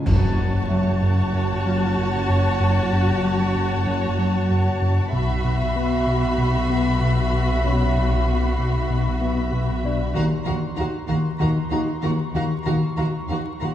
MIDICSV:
0, 0, Header, 1, 12, 480
1, 0, Start_track
1, 0, Tempo, 635593
1, 50, Time_signature, 4, 2, 24, 8
1, 2449, Tempo, 628272
1, 10473, End_track
2, 0, Start_track
2, 0, Title_t, "Violin section"
2, 0, Program_c, 0, 48
2, 3886, Note_on_c, 0, 96, 51
2, 3889, Note_on_c, 0, 95, 52
2, 6974, Note_off_c, 0, 96, 0
2, 7450, Note_off_c, 0, 95, 0
2, 7730, Note_on_c, 0, 84, 57
2, 7733, Note_on_c, 0, 82, 55
2, 8679, Note_on_c, 0, 85, 55
2, 10473, Note_off_c, 0, 82, 0
2, 10473, Note_off_c, 0, 84, 0
2, 10473, Note_off_c, 0, 85, 0
2, 10473, End_track
3, 0, Start_track
3, 0, Title_t, "Violin section"
3, 0, Program_c, 1, 48
3, 49, Note_on_c, 1, 81, 68
3, 3856, Note_off_c, 1, 81, 0
3, 3884, Note_on_c, 1, 83, 65
3, 7716, Note_off_c, 1, 83, 0
3, 7723, Note_on_c, 1, 82, 71
3, 7784, Note_off_c, 1, 82, 0
3, 7952, Note_on_c, 1, 82, 57
3, 8014, Note_off_c, 1, 82, 0
3, 8187, Note_on_c, 1, 82, 60
3, 8248, Note_off_c, 1, 82, 0
3, 8438, Note_on_c, 1, 82, 54
3, 8499, Note_off_c, 1, 82, 0
3, 8680, Note_on_c, 1, 82, 66
3, 8741, Note_off_c, 1, 82, 0
3, 8916, Note_on_c, 1, 82, 62
3, 8977, Note_off_c, 1, 82, 0
3, 9152, Note_on_c, 1, 82, 61
3, 9213, Note_off_c, 1, 82, 0
3, 9407, Note_on_c, 1, 82, 60
3, 9468, Note_off_c, 1, 82, 0
3, 9630, Note_on_c, 1, 82, 64
3, 9692, Note_off_c, 1, 82, 0
3, 9891, Note_on_c, 1, 82, 60
3, 9952, Note_off_c, 1, 82, 0
3, 10132, Note_on_c, 1, 82, 54
3, 10193, Note_off_c, 1, 82, 0
3, 10358, Note_on_c, 1, 82, 54
3, 10419, Note_off_c, 1, 82, 0
3, 10473, End_track
4, 0, Start_track
4, 0, Title_t, "Violin section"
4, 0, Program_c, 2, 48
4, 58, Note_on_c, 2, 73, 67
4, 3861, Note_off_c, 2, 73, 0
4, 3892, Note_on_c, 2, 76, 62
4, 7689, Note_off_c, 2, 76, 0
4, 7727, Note_on_c, 2, 77, 71
4, 7788, Note_off_c, 2, 77, 0
4, 7959, Note_on_c, 2, 77, 61
4, 8020, Note_off_c, 2, 77, 0
4, 8197, Note_on_c, 2, 77, 58
4, 8258, Note_off_c, 2, 77, 0
4, 8435, Note_on_c, 2, 77, 60
4, 8496, Note_off_c, 2, 77, 0
4, 8680, Note_on_c, 2, 77, 61
4, 8741, Note_off_c, 2, 77, 0
4, 8918, Note_on_c, 2, 77, 57
4, 8979, Note_off_c, 2, 77, 0
4, 9154, Note_on_c, 2, 77, 60
4, 9216, Note_off_c, 2, 77, 0
4, 9405, Note_on_c, 2, 77, 63
4, 9466, Note_off_c, 2, 77, 0
4, 9643, Note_on_c, 2, 77, 63
4, 9704, Note_off_c, 2, 77, 0
4, 9877, Note_on_c, 2, 77, 58
4, 9939, Note_off_c, 2, 77, 0
4, 10121, Note_on_c, 2, 77, 56
4, 10182, Note_off_c, 2, 77, 0
4, 10366, Note_on_c, 2, 77, 54
4, 10427, Note_off_c, 2, 77, 0
4, 10473, End_track
5, 0, Start_track
5, 0, Title_t, "Celesta"
5, 0, Program_c, 3, 8
5, 0, Control_c, 3, 64, 127
5, 63, Control_c, 3, 64, 0
5, 171, Control_c, 3, 64, 127
5, 520, Note_on_c, 3, 76, 54
5, 1934, Note_off_c, 3, 76, 0
5, 3412, Note_on_c, 3, 78, 50
5, 3903, Control_c, 3, 64, 0
5, 4009, Control_c, 3, 64, 127
5, 4814, Note_off_c, 3, 78, 0
5, 5811, Note_on_c, 3, 73, 47
5, 5812, Note_on_c, 3, 61, 43
5, 7214, Note_off_c, 3, 73, 0
5, 7215, Note_off_c, 3, 61, 0
5, 7498, Note_on_c, 3, 74, 67
5, 7499, Note_on_c, 3, 62, 46
5, 7730, Control_c, 3, 64, 0
5, 7864, Control_c, 3, 64, 127
5, 8896, Note_off_c, 3, 62, 0
5, 8896, Note_off_c, 3, 74, 0
5, 10473, End_track
6, 0, Start_track
6, 0, Title_t, "Viola section"
6, 0, Program_c, 4, 48
6, 42, Note_on_c, 4, 66, 73
6, 3853, Note_off_c, 4, 66, 0
6, 3889, Note_on_c, 4, 66, 67
6, 7687, Note_off_c, 4, 66, 0
6, 7722, Note_on_c, 4, 66, 74
6, 7783, Note_off_c, 4, 66, 0
6, 7965, Note_on_c, 4, 66, 62
6, 8026, Note_off_c, 4, 66, 0
6, 8215, Note_on_c, 4, 66, 65
6, 8276, Note_off_c, 4, 66, 0
6, 8448, Note_on_c, 4, 66, 56
6, 8509, Note_off_c, 4, 66, 0
6, 8683, Note_on_c, 4, 66, 64
6, 8744, Note_off_c, 4, 66, 0
6, 8925, Note_on_c, 4, 66, 57
6, 8986, Note_off_c, 4, 66, 0
6, 9165, Note_on_c, 4, 66, 65
6, 9226, Note_off_c, 4, 66, 0
6, 9406, Note_on_c, 4, 66, 62
6, 9467, Note_off_c, 4, 66, 0
6, 9648, Note_on_c, 4, 66, 66
6, 9709, Note_off_c, 4, 66, 0
6, 9892, Note_on_c, 4, 66, 57
6, 9953, Note_off_c, 4, 66, 0
6, 10137, Note_on_c, 4, 66, 59
6, 10198, Note_off_c, 4, 66, 0
6, 10378, Note_on_c, 4, 66, 50
6, 10439, Note_off_c, 4, 66, 0
6, 10473, End_track
7, 0, Start_track
7, 0, Title_t, "Cello section"
7, 0, Program_c, 5, 48
7, 54, Note_on_c, 5, 42, 72
7, 3859, Note_off_c, 5, 42, 0
7, 3890, Note_on_c, 5, 47, 67
7, 7719, Note_off_c, 5, 47, 0
7, 7724, Note_on_c, 5, 51, 76
7, 7786, Note_off_c, 5, 51, 0
7, 7958, Note_on_c, 5, 51, 65
7, 8019, Note_off_c, 5, 51, 0
7, 8196, Note_on_c, 5, 51, 68
7, 8257, Note_off_c, 5, 51, 0
7, 8430, Note_on_c, 5, 51, 66
7, 8491, Note_off_c, 5, 51, 0
7, 8682, Note_on_c, 5, 51, 67
7, 8743, Note_off_c, 5, 51, 0
7, 8922, Note_on_c, 5, 51, 61
7, 8983, Note_off_c, 5, 51, 0
7, 9162, Note_on_c, 5, 51, 74
7, 9223, Note_off_c, 5, 51, 0
7, 9411, Note_on_c, 5, 51, 63
7, 9472, Note_off_c, 5, 51, 0
7, 9650, Note_on_c, 5, 51, 77
7, 9711, Note_off_c, 5, 51, 0
7, 9894, Note_on_c, 5, 51, 58
7, 9955, Note_off_c, 5, 51, 0
7, 10133, Note_on_c, 5, 51, 65
7, 10194, Note_off_c, 5, 51, 0
7, 10380, Note_on_c, 5, 51, 58
7, 10441, Note_off_c, 5, 51, 0
7, 10473, End_track
8, 0, Start_track
8, 0, Title_t, "Analog synth bass"
8, 0, Program_c, 6, 38
8, 47, Note_on_c, 6, 42, 98
8, 193, Note_off_c, 6, 42, 0
8, 293, Note_on_c, 6, 42, 71
8, 437, Note_off_c, 6, 42, 0
8, 532, Note_on_c, 6, 54, 76
8, 677, Note_off_c, 6, 54, 0
8, 774, Note_on_c, 6, 42, 74
8, 918, Note_off_c, 6, 42, 0
8, 1007, Note_on_c, 6, 42, 101
8, 1153, Note_off_c, 6, 42, 0
8, 1254, Note_on_c, 6, 54, 74
8, 1397, Note_off_c, 6, 54, 0
8, 1492, Note_on_c, 6, 42, 77
8, 1635, Note_off_c, 6, 42, 0
8, 1731, Note_on_c, 6, 42, 74
8, 1875, Note_off_c, 6, 42, 0
8, 1965, Note_on_c, 6, 42, 100
8, 2111, Note_off_c, 6, 42, 0
8, 2208, Note_on_c, 6, 42, 68
8, 2352, Note_off_c, 6, 42, 0
8, 2447, Note_on_c, 6, 54, 69
8, 2592, Note_off_c, 6, 54, 0
8, 2688, Note_on_c, 6, 42, 73
8, 2833, Note_off_c, 6, 42, 0
8, 2927, Note_on_c, 6, 42, 91
8, 3071, Note_off_c, 6, 42, 0
8, 3169, Note_on_c, 6, 54, 72
8, 3313, Note_off_c, 6, 54, 0
8, 3412, Note_on_c, 6, 42, 66
8, 3555, Note_off_c, 6, 42, 0
8, 3650, Note_on_c, 6, 42, 69
8, 3793, Note_off_c, 6, 42, 0
8, 3887, Note_on_c, 6, 47, 92
8, 4031, Note_off_c, 6, 47, 0
8, 4130, Note_on_c, 6, 47, 68
8, 4272, Note_off_c, 6, 47, 0
8, 4371, Note_on_c, 6, 59, 68
8, 4512, Note_off_c, 6, 59, 0
8, 4608, Note_on_c, 6, 47, 68
8, 4750, Note_off_c, 6, 47, 0
8, 4845, Note_on_c, 6, 47, 92
8, 4988, Note_off_c, 6, 47, 0
8, 5087, Note_on_c, 6, 59, 68
8, 5230, Note_off_c, 6, 59, 0
8, 5330, Note_on_c, 6, 47, 66
8, 5473, Note_off_c, 6, 47, 0
8, 5570, Note_on_c, 6, 47, 63
8, 5713, Note_off_c, 6, 47, 0
8, 5817, Note_on_c, 6, 47, 88
8, 5958, Note_off_c, 6, 47, 0
8, 6058, Note_on_c, 6, 47, 66
8, 6199, Note_off_c, 6, 47, 0
8, 6296, Note_on_c, 6, 59, 65
8, 6438, Note_off_c, 6, 59, 0
8, 6531, Note_on_c, 6, 47, 64
8, 6674, Note_off_c, 6, 47, 0
8, 6772, Note_on_c, 6, 47, 90
8, 6913, Note_off_c, 6, 47, 0
8, 7011, Note_on_c, 6, 59, 66
8, 7151, Note_off_c, 6, 59, 0
8, 7246, Note_on_c, 6, 47, 70
8, 7387, Note_off_c, 6, 47, 0
8, 7486, Note_on_c, 6, 47, 67
8, 7627, Note_off_c, 6, 47, 0
8, 7722, Note_on_c, 6, 51, 88
8, 7864, Note_off_c, 6, 51, 0
8, 7963, Note_on_c, 6, 51, 62
8, 8104, Note_off_c, 6, 51, 0
8, 8196, Note_on_c, 6, 63, 67
8, 8339, Note_off_c, 6, 63, 0
8, 8441, Note_on_c, 6, 51, 64
8, 8583, Note_off_c, 6, 51, 0
8, 8679, Note_on_c, 6, 51, 89
8, 8823, Note_off_c, 6, 51, 0
8, 8922, Note_on_c, 6, 63, 66
8, 9066, Note_off_c, 6, 63, 0
8, 9161, Note_on_c, 6, 51, 66
8, 9305, Note_off_c, 6, 51, 0
8, 9405, Note_on_c, 6, 51, 61
8, 9548, Note_off_c, 6, 51, 0
8, 9644, Note_on_c, 6, 51, 83
8, 9788, Note_off_c, 6, 51, 0
8, 9891, Note_on_c, 6, 51, 58
8, 10034, Note_off_c, 6, 51, 0
8, 10139, Note_on_c, 6, 63, 64
8, 10280, Note_off_c, 6, 63, 0
8, 10378, Note_on_c, 6, 51, 57
8, 10473, Note_off_c, 6, 51, 0
8, 10473, End_track
9, 0, Start_track
9, 0, Title_t, "Timpani"
9, 0, Program_c, 7, 47
9, 53, Note_on_c, 7, 42, 94
9, 745, Note_off_c, 7, 42, 0
9, 10473, End_track
10, 0, Start_track
10, 0, Title_t, "Double bass section"
10, 0, Program_c, 8, 48
10, 61, Note_on_c, 8, 30, 68
10, 3862, Note_off_c, 8, 30, 0
10, 3897, Note_on_c, 8, 35, 68
10, 7722, Note_off_c, 8, 35, 0
10, 7723, Note_on_c, 8, 39, 77
10, 7784, Note_off_c, 8, 39, 0
10, 7971, Note_on_c, 8, 39, 71
10, 8033, Note_off_c, 8, 39, 0
10, 8210, Note_on_c, 8, 39, 69
10, 8271, Note_off_c, 8, 39, 0
10, 8446, Note_on_c, 8, 39, 70
10, 8507, Note_off_c, 8, 39, 0
10, 8685, Note_on_c, 8, 39, 71
10, 8747, Note_off_c, 8, 39, 0
10, 8918, Note_on_c, 8, 39, 65
10, 8979, Note_off_c, 8, 39, 0
10, 9159, Note_on_c, 8, 39, 76
10, 9220, Note_off_c, 8, 39, 0
10, 9397, Note_on_c, 8, 39, 69
10, 9459, Note_off_c, 8, 39, 0
10, 9638, Note_on_c, 8, 39, 71
10, 9699, Note_off_c, 8, 39, 0
10, 9877, Note_on_c, 8, 39, 68
10, 9938, Note_off_c, 8, 39, 0
10, 10119, Note_on_c, 8, 39, 65
10, 10180, Note_off_c, 8, 39, 0
10, 10361, Note_on_c, 8, 39, 63
10, 10422, Note_off_c, 8, 39, 0
10, 10473, End_track
11, 0, Start_track
11, 0, Title_t, "Impact"
11, 0, Program_c, 10, 103
11, 46, Note_on_c, 10, 60, 67
11, 1969, Note_off_c, 10, 60, 0
11, 10473, End_track
12, 0, Start_track
12, 0, Title_t, "Drums"
12, 52, Note_on_c, 9, 35, 86
12, 52, Note_on_c, 9, 49, 79
12, 127, Note_off_c, 9, 35, 0
12, 127, Note_off_c, 9, 49, 0
12, 10473, End_track
0, 0, End_of_file